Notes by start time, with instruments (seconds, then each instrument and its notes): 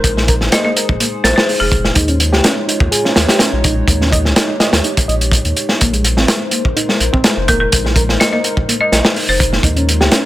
Already playing: analog synth pad G#3 D#4 C5
0.04 sub bass A#1, analog synth pad G#4, kick, closed hi-hat
0.17 reed electric piano G#3, snare
0.28 reed electric piano A#4, kick, closed hi-hat
0.40 sub bass G#1, snare
0.52 reed electric piano A#3, marimba D#5, snare, closed hi-hat
0.64 reed electric piano A#3, marimba D#5
0.77 reed electric piano A#4, closed hi-hat
0.89 sub bass A#1, kick
1.00 reed electric piano A#3, closed hi-hat
1.24 sub bass A#1, reed electric piano A#4, marimba C5, snare, closed hi-hat
1.36 marimba C5, snare
1.49 open hi-hat
1.60 sub bass F1, marimba G#4
1.72 kick, closed hi-hat
1.84 snare
1.95 sub bass D#2, analog synth pad G#3 D#4 F4 C#5, reed electric piano D#4, kick, closed hi-hat
2.08 reed electric piano C#4, closed hi-hat
2.20 closed hi-hat
2.33 sub bass C#2, reed electric piano G4, snare
2.44 reed electric piano C#4, snare, closed hi-hat
2.68 reed electric piano D#4, closed hi-hat
2.80 sub bass D#2, kick
2.91 reed electric piano G#4, closed hi-hat
3.04 reed electric piano C#4, snare
3.16 sub bass D#2, snare, closed hi-hat
3.29 reed electric piano G4, snare, closed hi-hat
3.39 reed electric piano C#4, snare, closed hi-hat
3.53 sub bass A#1
3.64 reed electric piano D#4, kick, closed hi-hat
3.87 sub bass D#2, analog synth pad G4, kick, closed hi-hat
4.00 reed electric piano C#4, snare
4.12 reed electric piano D#5, kick, closed hi-hat
4.25 sub bass C#2, snare
4.36 reed electric piano D#4, snare, closed hi-hat
4.49 reed electric piano D#4
4.60 reed electric piano D#5, snare, closed hi-hat
4.73 sub bass D#2, snare, closed hi-hat
4.84 reed electric piano D#4, closed hi-hat
4.97 kick, closed hi-hat
5.08 sub bass A#1, reed electric piano D#5, closed hi-hat
5.21 closed hi-hat
5.31 kick, closed hi-hat
5.45 sub bass D#2, closed hi-hat
5.56 closed hi-hat
5.69 snare
5.80 sub bass A#1, analog synth pad G#3 D#4 A#4 C5, reed electric piano A#3, kick, closed hi-hat
5.93 reed electric piano G#3, closed hi-hat
6.04 closed hi-hat
6.17 sub bass G#1, reed electric piano C4, snare
6.28 reed electric piano G#3, snare, closed hi-hat
6.51 reed electric piano A#3, closed hi-hat
6.65 sub bass A#1, kick
6.76 reed electric piano D#4, closed hi-hat
6.89 reed electric piano G#3, snare
7.00 sub bass A#1, closed hi-hat
7.13 reed electric piano C4, kick
7.24 reed electric piano G#3, snare, closed hi-hat
7.37 sub bass F1
7.48 reed electric piano A#3, marimba A#4, kick, closed hi-hat
7.60 marimba A#4
7.72 sub bass A#1, kick, closed hi-hat
7.85 reed electric piano G#3, snare
7.96 reed electric piano A#4, kick, closed hi-hat
8.08 sub bass G#1, snare
8.20 reed electric piano A#3, marimba D#5, snare, closed hi-hat
8.33 reed electric piano A#3, marimba D#5
8.44 reed electric piano A#4, closed hi-hat
8.57 sub bass A#1, kick
8.69 reed electric piano A#3, closed hi-hat
8.81 marimba D#5
8.92 sub bass A#1, reed electric piano A#4, marimba D#5, snare, closed hi-hat
9.05 snare
9.16 open hi-hat
9.28 sub bass F1, marimba C5
9.40 kick, closed hi-hat
9.53 snare
9.63 sub bass D#2, analog synth pad G#3 F4 C#5, reed electric piano D#4, kick, closed hi-hat
9.76 reed electric piano C#4, closed hi-hat
9.89 closed hi-hat
10.00 sub bass C#2, reed electric piano G4, snare
10.12 reed electric piano C#4, snare, closed hi-hat